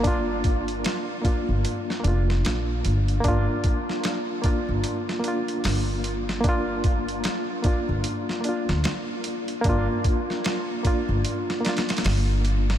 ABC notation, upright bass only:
X:1
M:4/4
L:1/16
Q:"Swing 16ths" 1/4=75
K:Gm
V:1 name="Upright bass" clef=bass
G,,,4 z3 G,,, z2 F,,,2 B,,,2 G,,,2 | G,,, z6 G,,, z4 G,,,4- | G,,,4 z3 G,,, z3 D,, z4 | G,,, z6 G,,, z4 G,,,4 |]